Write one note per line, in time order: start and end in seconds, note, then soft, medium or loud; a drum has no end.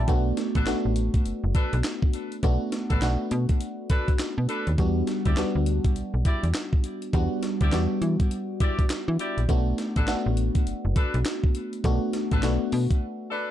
0.08 0.33 B1 loud
0.08 0.51 A3 medium
0.08 0.52 B3 medium
0.08 0.52 D4 medium
0.08 0.52 F#4 medium
0.08 kick loud
0.08 closed hi-hat medium
0.37 snare medium
0.37 closed hi-hat medium
0.55 0.65 A1 medium
0.55 0.72 D4 medium
0.55 0.72 A4 medium
0.55 0.72 B4 medium
0.55 kick loud
0.55 closed hi-hat soft
0.67 0.74 A1 soft
0.67 1.50 A3 medium
0.67 1.50 B3 medium
0.67 1.50 D4 medium
0.67 1.50 F#4 medium
0.67 snare loud
0.67 clap medium
0.67 closed hi-hat medium
0.85 1.10 A1 medium
0.96 closed hi-hat medium
1.14 kick medium
1.14 closed hi-hat medium
1.26 1.33 F#1 soft
1.26 closed hi-hat medium
1.44 1.53 F#1 medium
1.54 1.76 D4 medium
1.54 1.76 A4 medium
1.54 1.77 B4 medium
1.54 kick medium
1.54 closed hi-hat medium
1.73 1.82 B1 loud
1.73 closed hi-hat medium
1.84 snare loud
1.84 clap loud
1.84 closed hi-hat medium
2.02 kick loud
2.13 closed hi-hat medium
2.32 closed hi-hat medium
2.43 2.58 B1 loud
2.43 2.86 A3 medium
2.43 2.87 B3 medium
2.43 2.87 D4 medium
2.43 2.87 F#4 medium
2.43 kick loud
2.43 closed hi-hat medium
2.72 snare medium
2.72 closed hi-hat medium
2.90 3.00 A1 medium
2.90 3.07 D4 medium
2.90 3.07 A4 medium
2.90 3.08 B4 medium
2.90 kick medium
2.90 closed hi-hat medium
3.02 3.17 B1 medium
3.02 3.85 A3 medium
3.02 3.85 B3 medium
3.02 3.86 D4 medium
3.02 3.86 F#4 medium
3.02 snare loud
3.02 clap medium
3.02 closed hi-hat medium
3.31 3.46 B2 loud
3.31 closed hi-hat medium
3.49 kick medium
3.49 closed hi-hat medium
3.61 closed hi-hat medium
3.89 4.11 D4 medium
3.89 4.11 A4 medium
3.89 4.12 B4 medium
3.89 kick loud
3.89 closed hi-hat medium
4.08 kick medium
4.08 closed hi-hat medium
4.19 snare loud
4.19 clap loud
4.19 closed hi-hat medium
4.38 4.47 B2 loud
4.48 4.70 D4 medium
4.48 4.70 A4 medium
4.48 4.70 B4 medium
4.48 closed hi-hat medium
4.67 4.77 D#2 medium
4.67 closed hi-hat soft
4.78 5.03 E2 loud
4.78 5.22 G3 medium
4.78 5.22 B3 medium
4.78 5.22 D4 medium
4.78 5.22 F#4 medium
4.78 kick loud
4.78 closed hi-hat medium
5.07 snare medium
5.07 closed hi-hat medium
5.25 5.35 D2 medium
5.25 5.42 E4 medium
5.25 5.43 G4 medium
5.25 5.43 D5 medium
5.25 kick medium
5.25 closed hi-hat medium
5.37 5.44 D2 soft
5.37 6.20 G3 medium
5.37 6.21 B3 medium
5.37 6.21 D4 medium
5.37 6.21 F#4 medium
5.37 snare loud
5.37 clap medium
5.37 closed hi-hat medium
5.55 5.80 D2 medium
5.66 closed hi-hat medium
5.84 kick medium
5.84 closed hi-hat medium
5.96 6.03 B1 soft
5.96 closed hi-hat medium
6.14 6.23 B1 medium
6.25 6.47 E4 medium
6.25 6.47 G4 medium
6.25 6.47 D5 medium
6.25 kick loud
6.25 closed hi-hat medium
6.43 6.53 E2 medium
6.43 closed hi-hat medium
6.54 snare loud
6.54 clap loud
6.54 closed hi-hat medium
6.73 kick loud
6.84 closed hi-hat medium
7.02 closed hi-hat soft
7.13 7.29 E2 loud
7.13 7.57 G3 medium
7.13 7.57 B3 medium
7.13 7.57 D4 medium
7.13 7.58 F#4 loud
7.13 kick loud
7.13 closed hi-hat medium
7.43 snare medium
7.43 closed hi-hat medium
7.61 7.71 D2 medium
7.61 7.78 E4 medium
7.61 7.78 G4 medium
7.61 7.78 D5 medium
7.61 kick loud
7.61 closed hi-hat medium
7.72 7.87 E2 medium
7.72 8.56 G3 medium
7.72 8.56 B3 medium
7.72 8.56 D4 medium
7.72 8.56 F#4 loud
7.72 snare loud
7.72 clap medium
7.72 closed hi-hat medium
8.02 8.17 E3 loud
8.02 closed hi-hat medium
8.20 kick medium
8.20 closed hi-hat medium
8.31 closed hi-hat medium
8.60 8.82 E4 medium
8.60 8.82 G4 medium
8.60 8.82 D5 medium
8.60 kick loud
8.60 closed hi-hat medium
8.79 kick medium
8.79 closed hi-hat soft
8.90 snare loud
8.90 clap loud
8.90 closed hi-hat medium
9.08 9.18 E3 loud
9.19 9.41 E4 medium
9.19 9.41 G4 medium
9.19 9.41 D5 medium
9.19 closed hi-hat medium
9.38 9.47 A#1 medium
9.38 closed hi-hat medium
9.49 9.74 B1 medium
9.49 9.92 A3 medium
9.49 9.92 B3 medium
9.49 9.93 D4 medium
9.49 9.93 F#4 medium
9.49 kick loud
9.49 closed hi-hat medium
9.78 snare medium
9.78 closed hi-hat medium
9.96 10.06 A1 medium
9.96 10.13 D4 medium
9.96 10.13 A4 medium
9.96 10.13 B4 medium
9.96 kick loud
9.96 closed hi-hat medium
10.07 10.15 A1 soft
10.07 10.91 A3 medium
10.07 10.91 B3 medium
10.07 10.91 D4 medium
10.07 10.91 F#4 loud
10.07 snare loud
10.07 clap medium
10.07 closed hi-hat medium
10.26 10.51 A1 medium
10.37 closed hi-hat medium
10.55 kick medium
10.55 closed hi-hat medium
10.67 10.74 F#1 soft
10.67 closed hi-hat medium
10.85 10.94 F#1 medium
10.95 11.17 D4 medium
10.95 11.17 A4 medium
10.95 11.18 B4 medium
10.95 kick loud
10.95 closed hi-hat medium
11.14 11.24 B1 loud
11.14 closed hi-hat medium
11.25 snare loud
11.25 clap medium
11.25 closed hi-hat medium
11.44 kick loud
11.55 closed hi-hat medium
11.73 closed hi-hat soft
11.84 11.99 B1 loud
11.84 12.28 A3 medium
11.84 12.28 B3 medium
11.84 12.28 D4 medium
11.84 12.28 F#4 loud
11.84 kick loud
11.84 closed hi-hat medium
12.13 snare medium
12.13 closed hi-hat medium
12.31 12.41 A1 medium
12.31 12.48 D4 medium
12.31 12.49 A4 medium
12.31 12.49 B4 medium
12.31 kick medium
12.31 closed hi-hat soft
12.43 12.58 B1 medium
12.43 13.26 A3 medium
12.43 13.26 B3 medium
12.43 13.27 D4 medium
12.43 13.27 F#4 medium
12.43 snare loud
12.43 clap medium
12.43 closed hi-hat medium
12.72 12.88 B2 loud
12.72 open hi-hat medium
12.91 kick medium
12.91 closed hi-hat medium
13.31 13.51 D4 medium
13.31 13.51 A4 medium
13.31 13.51 B4 medium
13.31 13.51 D5 medium